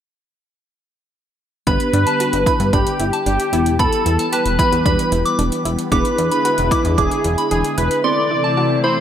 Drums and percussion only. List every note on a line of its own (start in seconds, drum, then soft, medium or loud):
1.67 kick loud
1.67 closed hi-hat medium
1.80 closed hi-hat medium
1.94 closed hi-hat medium
2.07 closed hi-hat medium
2.20 closed hi-hat medium
2.33 closed hi-hat medium
2.46 kick medium
2.46 closed hi-hat medium
2.60 closed hi-hat soft
2.73 kick medium
2.73 closed hi-hat medium
2.87 closed hi-hat medium
3.00 closed hi-hat medium
3.13 closed hi-hat soft
3.26 closed hi-hat medium
3.40 closed hi-hat soft
3.53 closed hi-hat medium
3.66 closed hi-hat soft
3.79 kick loud
3.79 closed hi-hat medium
3.93 closed hi-hat medium
4.06 closed hi-hat medium
4.19 closed hi-hat medium
4.33 closed hi-hat medium
4.46 closed hi-hat medium
4.59 kick medium
4.59 closed hi-hat medium
4.72 closed hi-hat soft
4.86 kick medium
4.86 closed hi-hat medium
4.99 closed hi-hat medium
5.12 closed hi-hat medium
5.26 closed hi-hat soft
5.39 closed hi-hat medium
5.52 closed hi-hat medium
5.65 closed hi-hat medium
5.79 closed hi-hat soft
5.92 kick loud
5.92 closed hi-hat medium
6.05 closed hi-hat medium
6.18 closed hi-hat medium
6.32 closed hi-hat medium
6.45 closed hi-hat medium
6.58 closed hi-hat medium
6.71 kick medium
6.71 closed hi-hat medium
6.85 closed hi-hat medium
6.98 kick medium
6.98 closed hi-hat medium
7.11 closed hi-hat medium
7.24 closed hi-hat medium
7.38 closed hi-hat soft
7.51 closed hi-hat medium
7.64 closed hi-hat soft
7.78 closed hi-hat medium
7.91 closed hi-hat soft